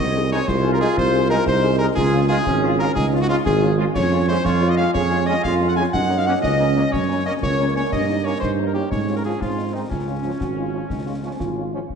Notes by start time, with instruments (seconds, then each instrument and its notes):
Already playing: cornet D#5
0.00 tuba C2, euphonium C4, woodwind section D#5
0.16 french horn section G#3 D#4 G#4
0.32 french horn section G#3 D#4 G#4, trombone section G#3 D#4, cornet C#5, woodwind section C#5
0.48 tuba C2, euphonium F4, cornet C5, woodwind section C5, concert bass drum, snare
0.64 french horn section G#3 D#4 G#4
0.73 woodwind section A#4, cornet A#4
0.80 trombone section G#3 D#4, french horn section G#3 D#4 G#4, cornet G#4, woodwind section G#4
0.97 tuba C2, woodwind section C5, cornet C5, concert bass drum, snare
1.14 french horn section G#3 D#4 G#4
1.30 trombone section G#3 D#4, french horn section G#3 D#4 G#4, cornet A#4, woodwind section A#4
1.46 tuba C2, euphonium D#4, woodwind section C5, cornet C5, concert bass drum, snare
1.63 french horn section G#3 D#4 G#4
1.79 french horn section G#3 D#4 G#4, trombone section G#3 D#4, cornet A#4, woodwind section A#4
1.95 tuba C#2, euphonium F4, cornet G#4, woodwind section G#4, concert bass drum, snare, crash
2.13 french horn section G#3 C#4 F4
2.28 french horn section G#3 C#4 F4, trombone section G#3 F4, cornet G#4, woodwind section G#4
2.45 tuba G#1, euphonium C#4, concert bass drum, snare
2.63 french horn section G#3 C#4 F4
2.79 french horn section G#3 C#4 F4, trombone section G#3 F4, cornet A#4, woodwind section A#4
2.95 tuba C#2, euphonium D#4, cornet G#4, woodwind section G#4, concert bass drum, snare
3.13 french horn section G#3 C#4 F4
3.21 woodwind section F#4, cornet F#4
3.29 french horn section G#3 C#4 F4, trombone section G#3 F4, cornet F4, woodwind section F4
3.45 tuba G#1, cornet G#4, woodwind section G#4, concert bass drum, snare
3.62 french horn section G#3 C#4 F4
3.78 french horn section G#3 C#4 F4, trombone section G#3 F4
3.95 tuba F2, euphonium C#4, cornet C#5, woodwind section C#5, concert bass drum, snare, crash
4.12 french horn section G#3 C#4 F4
4.28 french horn section G#3 C#4 F4, trombone section G#3 C#4, cornet C5, woodwind section C5
4.44 tuba F2, euphonium F4, cornet C#5, woodwind section C#5, concert bass drum, snare
4.62 french horn section G#3 C#4 F4
4.70 cornet D#5, woodwind section D#5
4.77 french horn section G#3 C#4 F4, trombone section G#3 C#4, cornet F5, woodwind section F5
4.94 tuba F2, euphonium G#4, cornet C#5, woodwind section C#5, concert bass drum, snare
5.11 french horn section G#3 C#4 F4
5.27 french horn section G#3 C#4 F4, trombone section G#3 C#4, woodwind section D#5, cornet D#5
5.43 tuba F2, euphonium F4, woodwind section F5, cornet F5, concert bass drum, snare
5.60 french horn section G#3 C#4 F4
5.68 cornet F#5, woodwind section F#5
5.76 french horn section G#3 C#4 F4, trombone section G#3 C#4, cornet G#5, woodwind section G#5
5.93 tuba F#2, euphonium D#4, cornet F#5, woodwind section F#5, concert bass drum, snare, crash
6.09 french horn section A#3 C#4
6.18 cornet F5, woodwind section F5
6.26 french horn section A#3 C#4, trombone section A#3 C#4, cornet F#5, woodwind section F#5
6.42 tuba C#2, euphonium C#4, cornet D#5, woodwind section D#5, concert bass drum, snare
6.60 french horn section A#3 C#4
6.75 trombone section A#3 C#4, french horn section A#3 C#4
6.92 tuba F#2, woodwind section C#5, cornet C#5, concert bass drum, snare
7.09 french horn section A#3 C#4
7.25 trombone section A#3 C#4, french horn section A#3 C#4, cornet D#5, woodwind section D#5
7.42 tuba C#2, euphonium A#3, woodwind section C#5, cornet C#5, concert bass drum, snare
7.59 french horn section A#3 C#4
7.75 french horn section A#3 C#4, trombone section A#3 C#4, cornet C#5, woodwind section C#5
7.92 tuba G2, woodwind section D#5, cornet D#5, concert bass drum, snare, crash
8.09 french horn section A#3 C#4 D#4
8.25 trombone section A#3 C#4, french horn section A#3 C#4 D#4, cornet C#5, woodwind section C#5
8.40 tuba G2, euphonium D#4, cornet C5, woodwind section C5, concert bass drum, snare
8.59 french horn section A#3 C#4 D#4
8.67 woodwind section A#4, cornet A#4
8.74 french horn section A#3 C#4 D#4, trombone section A#3 C#4, cornet G4, woodwind section G4
8.91 tuba G#2, euphonium C#4, woodwind section C#5, cornet C#5, concert bass drum, snare
9.08 french horn section G#3 C#4 F4
9.16 woodwind section A#4, cornet A#4
9.25 trombone section F3 C#4, french horn section G#3 C#4 F4, woodwind section G#4, cornet G#4
9.41 tuba G#2, euphonium C4, woodwind section F4, cornet F4, concert bass drum, snare
9.57 french horn section G#3 C4 D#4
9.73 trombone section D#3 C4, french horn section G#3 C4 D#4, cornet D#4, woodwind section D#4
9.90 tuba C#2, cornet C#4, woodwind section C#4, euphonium F4, concert bass drum, snare, crash
10.07 french horn section G#3 C#4 F4
10.24 trombone section F3 C#4, french horn section G#3 C#4 F4
10.40 tuba G#1, euphonium F#4, concert bass drum, snare
10.57 french horn section G#3 C#4 F4
10.73 trombone section F3 C#4, french horn section G#3 C#4 F4, euphonium F4
10.89 tuba C#2, euphonium D#4, concert bass drum, snare
11.06 french horn section G#3 C#4 F4
11.16 euphonium C#4
11.23 trombone section F3 C#4, french horn section G#3 C#4 F4, euphonium C4
11.40 tuba G#1, euphonium F4, concert bass drum, snare
11.57 french horn section G#3 C#4 F4
11.73 trombone section F3 C#4, french horn section G#3 C#4 F4, euphonium C4
11.90 tuba C#2, euphonium C#4, woodwind section F4, concert bass drum